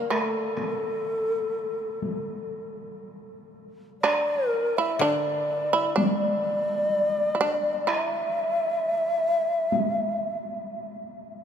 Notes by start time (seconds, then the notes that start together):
Already playing: D3 A#4
0.10 A3 A#4, taiko rim
0.21 A4
0.57 taiko rim, taiko high
1.15 A#3
1.37 A3
1.73 A#3
1.94 A3
2.02 taiko high
4.02 D4 D5, taiko rim
4.49 A#4
4.77 E4 F5
4.82 E5
4.99 D3 D4 E5
5.05 D5
5.73 E4
5.96 D4 D5, taiko high
7.35 E4
7.41 D4
7.87 E4 E5, taiko rim
9.72 taiko high